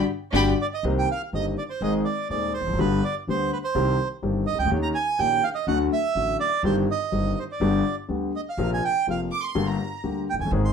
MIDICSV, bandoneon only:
0, 0, Header, 1, 2, 480
1, 0, Start_track
1, 0, Key_signature, -3, "minor"
1, 0, Tempo, 490196
1, 822, Time_signature, 4, 2, 24, 8
1, 3207, Tempo, 482703
1, 10618, End_track
2, 0, Start_track
2, 0, Title_t, "Bandoneon"
2, 0, Program_c, 0, 23
2, 603, Note_on_c, 0, 74, 88
2, 652, Note_off_c, 0, 74, 0
2, 725, Note_on_c, 0, 75, 77
2, 829, Note_off_c, 0, 75, 0
2, 966, Note_on_c, 0, 79, 77
2, 1067, Note_off_c, 0, 79, 0
2, 1091, Note_on_c, 0, 77, 83
2, 1193, Note_off_c, 0, 77, 0
2, 1322, Note_on_c, 0, 75, 82
2, 1426, Note_off_c, 0, 75, 0
2, 1548, Note_on_c, 0, 74, 70
2, 1601, Note_off_c, 0, 74, 0
2, 1665, Note_on_c, 0, 72, 72
2, 1787, Note_off_c, 0, 72, 0
2, 1793, Note_on_c, 0, 75, 78
2, 1898, Note_off_c, 0, 75, 0
2, 2005, Note_on_c, 0, 74, 71
2, 2233, Note_off_c, 0, 74, 0
2, 2253, Note_on_c, 0, 74, 74
2, 2476, Note_off_c, 0, 74, 0
2, 2486, Note_on_c, 0, 72, 77
2, 2736, Note_off_c, 0, 72, 0
2, 2737, Note_on_c, 0, 71, 79
2, 2979, Note_on_c, 0, 74, 77
2, 2980, Note_off_c, 0, 71, 0
2, 3084, Note_off_c, 0, 74, 0
2, 3231, Note_on_c, 0, 72, 78
2, 3443, Note_off_c, 0, 72, 0
2, 3460, Note_on_c, 0, 71, 66
2, 3511, Note_off_c, 0, 71, 0
2, 3571, Note_on_c, 0, 72, 68
2, 4011, Note_off_c, 0, 72, 0
2, 4393, Note_on_c, 0, 75, 88
2, 4507, Note_off_c, 0, 75, 0
2, 4516, Note_on_c, 0, 79, 77
2, 4624, Note_off_c, 0, 79, 0
2, 4750, Note_on_c, 0, 82, 81
2, 4806, Note_off_c, 0, 82, 0
2, 4870, Note_on_c, 0, 80, 90
2, 5112, Note_on_c, 0, 79, 92
2, 5120, Note_off_c, 0, 80, 0
2, 5359, Note_off_c, 0, 79, 0
2, 5359, Note_on_c, 0, 77, 83
2, 5411, Note_off_c, 0, 77, 0
2, 5468, Note_on_c, 0, 75, 76
2, 5581, Note_off_c, 0, 75, 0
2, 5596, Note_on_c, 0, 78, 77
2, 5703, Note_off_c, 0, 78, 0
2, 5846, Note_on_c, 0, 76, 84
2, 6284, Note_off_c, 0, 76, 0
2, 6316, Note_on_c, 0, 74, 84
2, 6536, Note_off_c, 0, 74, 0
2, 6567, Note_on_c, 0, 72, 77
2, 6671, Note_off_c, 0, 72, 0
2, 6823, Note_on_c, 0, 75, 78
2, 7300, Note_off_c, 0, 75, 0
2, 7303, Note_on_c, 0, 72, 67
2, 7350, Note_off_c, 0, 72, 0
2, 7426, Note_on_c, 0, 74, 66
2, 7860, Note_off_c, 0, 74, 0
2, 8264, Note_on_c, 0, 75, 68
2, 8313, Note_off_c, 0, 75, 0
2, 8396, Note_on_c, 0, 77, 68
2, 8607, Note_off_c, 0, 77, 0
2, 8638, Note_on_c, 0, 80, 74
2, 8736, Note_off_c, 0, 80, 0
2, 8748, Note_on_c, 0, 79, 83
2, 8963, Note_off_c, 0, 79, 0
2, 9004, Note_on_c, 0, 77, 69
2, 9104, Note_off_c, 0, 77, 0
2, 10192, Note_on_c, 0, 79, 76
2, 10241, Note_off_c, 0, 79, 0
2, 10299, Note_on_c, 0, 80, 69
2, 10404, Note_off_c, 0, 80, 0
2, 10539, Note_on_c, 0, 84, 82
2, 10618, Note_off_c, 0, 84, 0
2, 10618, End_track
0, 0, End_of_file